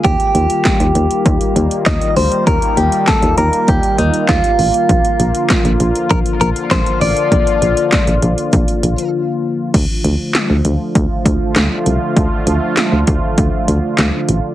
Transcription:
<<
  \new Staff \with { instrumentName = "Clean electric guitar" } { \time 4/4 \key d \phrygian \tempo 4 = 99 g'2. ees''8 c''8 | bes'8 g'8 a'8 bes'8 g'8 ees'8 f'4~ | f'2 bes'8 bes'8 c''8 d''8~ | d''2. r4 |
r1 | r1 | }
  \new Staff \with { instrumentName = "Analog synth pad" } { \clef bass \time 4/4 \key d \phrygian << { <ees g f'>1~ | <ees g f'>1 | <d f f'>1~ | <d f f'>1 |
<d f f'>1~ | <d f f'>1 | } \\ { bes1~ | bes1~ | bes1~ | bes1 |
a1~ | a1 | } >> }
  \new Staff \with { instrumentName = "FM bass" } { \clef bass \time 4/4 \key d \phrygian ees,16 r16 ees,16 r8 ees,16 ees,16 r16 ees,16 r16 ees,16 r16 ees,16 r16 d,16 r16 | ees,16 r16 ees,16 r8 ees,16 ees,16 r16 ees,16 r16 ees,16 r16 ees,16 r16 a,,16 r16 | bes,,16 r16 bes,,16 r8 bes,,16 bes,,16 r16 bes,,16 r16 bes,,16 r16 bes,,16 r16 a,,16 r16 | bes,,16 r16 bes,,16 r8 bes,,16 bes,,16 r16 bes,,16 r16 bes,,16 r4 r16 |
d,16 r16 d,16 r8 d,16 d,16 r16 d,16 r16 d,16 r16 d,16 r16 c,16 r16 | d,16 r16 d,16 r8 d,16 d,16 r16 d,16 r16 d,16 r16 d,16 r16 a,,16 r16 | }
  \new DrumStaff \with { instrumentName = "Drums" } \drummode { \time 4/4 <hh bd>16 hh16 hh16 hh16 <hc hh bd sn>16 hh16 hh16 hh16 <hh bd>16 hh16 hh16 hh16 <hc hh bd sn>16 hh16 hho16 hh16 | <hh bd>16 hh16 hh16 hh16 <hc hh bd sn>16 hh16 hh16 hh16 <hh bd>16 hh16 hh16 hh16 <hc hh bd sn>16 hh16 hho16 hh16 | <hh bd>16 hh16 hh16 hh16 <hc hh bd sn>16 hh16 hh16 hh16 <hh bd>16 hh16 hh16 hh16 <hc hh bd sn>16 hh16 hho16 hh16 | <hh bd>16 hh16 hh16 hh16 <hc hh bd sn>16 hh16 hh16 hh16 <hh bd>16 hh16 hh16 hh16 r4 |
<cymc hh bd>8 hh8 <hc hh sn>8 hh8 <hh bd>8 <hh bd>8 <hc hh sn>8 hh8 | <hh bd>8 hh8 <hc hh sn>8 <hh bd>8 <hh bd>8 hh8 <hc hh sn>8 hh8 | }
>>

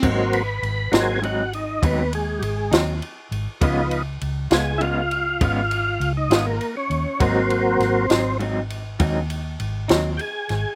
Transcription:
<<
  \new Staff \with { instrumentName = "Tonewheel organ" } { \time 12/8 \key aes \mixolydian \tempo 4. = 67 <ges bes c'>8 ces''4 <ges bes c' aes'>8 ges'8 ees'8 ces'8 aes8 <g aes>8 r4. | <f ces' ees'>8 r4 aes'8 <fes' f'>2~ <fes' f'>16 ees'8 bes8 des'8. | <ges bes c'>4. r2. r8 <g' aes'>4 | }
  \new Staff \with { instrumentName = "Clean electric guitar" } { \time 12/8 \key aes \mixolydian <aes, ges c' ees'>8 r4 <ges c' ees'>8 <aes, ges c' ees'>8 r8 <aes, ges c' ees'>8 r4 <ges c' ees'>8 r4 | <des aes ces' f'>8 r4 <aes ces' f'>8 <des aes ces' f'>8 r8 <des aes ces' f'>8 r4 <aes ces' f'>8 r4 | <aes, ges c' ees'>8 r4 <ges c' ees'>8 <aes, ges c' ees'>8 r8 <aes, ges c' ees'>8 r4 <ges c' ees'>8 r4 | }
  \new Staff \with { instrumentName = "Fingered electric bass" } { \clef bass \time 12/8 \key aes \mixolydian aes,,4 aes,,8 aes,,4. ees,4 aes,,8 ees,8 r8 aes,,16 r16 | des,4 des,8 des,4. aes,,4 des,8 aes,,8 r8 ees,16 r16 | aes,,4 aes,,8 aes,,4. ees,4 aes,,8 ees,8 r8 aes,,16 r16 | }
  \new DrumStaff \with { instrumentName = "Drums" } \drummode { \time 12/8 <cymc bd>8 cymr8 cymr8 <cymr sn>8 cymr8 cymr8 <bd cymr>8 cymr8 cymr8 <cymr sn>8 cymr8 cymr8 | <bd cymr>8 cymr8 cymr8 <cymr sn>8 cymr8 cymr8 <bd cymr>8 cymr8 cymr8 <cymr sn>8 cymr8 cymr8 | <bd cymr>8 cymr8 <cymr sn>8 <cymr sn>8 cymr8 cymr8 <bd cymr>8 cymr8 cymr8 <cymr sn>8 cymr8 <cymr sn>8 | }
>>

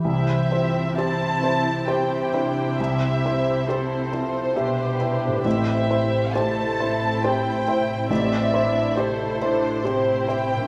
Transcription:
<<
  \new Staff \with { instrumentName = "Violin section" } { \time 3/4 \key c \major \tempo 4 = 68 e''4 a''4 g''4 | e''4 c''2 | e''4 a''4 g''4 | e''4 c''4. g''8 | }
  \new Staff \with { instrumentName = "Violin section" } { \time 3/4 \key c \major << { c''4 c''4 c''4~ | c''4 a'4 b'4 | c''4 c''2 | d''4 c''4 c''4 | } \\ { g'4 e'4 e'4~ | e'4 a'4 g'4 | g'4 a'4 e'4 | e'4 a'4 g'4 | } >> }
  \new Staff \with { instrumentName = "Felt piano" } { \time 3/4 \key c \major c,8 <e' c''>8 <g' c''>8 <e' c''>8 <g' c''>8 <e' c''>8 | c,8 <e' c''>8 <g' c''>8 <e' c''>8 <g' e''>8 <e' e''>8 | a,,8 <e' c''>8 <g' c''>8 <e' c''>8 <g' c''>8 <e' c''>8 | a,,8 <e' c''>8 <g' c''>8 <e' c''>8 <g' c''>8 <e' c''>8 | }
  \new Staff \with { instrumentName = "Harp" } { \time 3/4 \key c \major <e e' g' b''>2.~ | <e e' g' b''>2. | <a, e' g' c''>2.~ | <a, e' g' c''>2. | }
  \new Staff \with { instrumentName = "Viola section" } { \time 3/4 \key c \major << { e'8 f8 e'4 g'4 | g'4 e'8 f8 g'4 | e'4 e'2 | g'8 d'8 e'4 e'4 | } \\ { c'2 c'8 d'8 | c'8 c'8 c'4 d'8 d'8 | c'8 c'8 a8 c'8 c'8 c'8~ | c'4 a8 d'8 c'4 | } >> }
  \new Staff \with { instrumentName = "Cello section" } { \clef bass \time 3/4 \key c \major c2.~ | c2 b,4 | a,2.~ | a,2. | }
>>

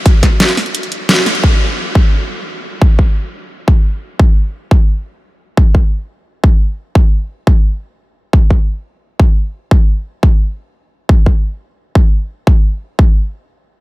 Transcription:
\new DrumStaff \with { instrumentName = "Drums" } \drummode { \time 4/4 \tempo 4 = 174 <hh bd>8 <hh bd sn>8 <hh sn>16 hh16 <hho sn>16 hh16 hh16 hh16 hh8 <hh sn>8 <hho sn>16 hh16 | bd4 r8 bd8 r4 r4 | bd8 bd8 r4 r8 bd8 r4 | bd4 r8 bd8 r4 r4 |
bd8 bd8 r4 r8 bd8 r4 | bd4 r8 bd8 r4 r4 | bd8 bd8 r4 r8 bd8 r4 | bd4 r8 bd8 r4 r4 |
bd8 bd8 r4 r8 bd8 r4 | bd4 r8 bd8 r4 r4 | }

